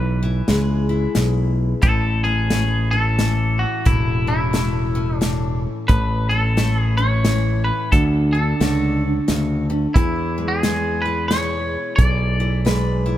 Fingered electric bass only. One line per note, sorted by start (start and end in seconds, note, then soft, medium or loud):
0.00 0.41 B1 medium
0.49 1.06 C#2 medium
1.16 1.73 B1 medium
1.83 3.64 A1 medium
3.86 5.67 E1 medium
5.89 7.70 A1 medium
7.93 8.53 D2 medium
8.61 9.18 C#2 medium
9.29 9.86 D2 medium
9.96 11.76 E2 loud
11.98 13.18 B1 medium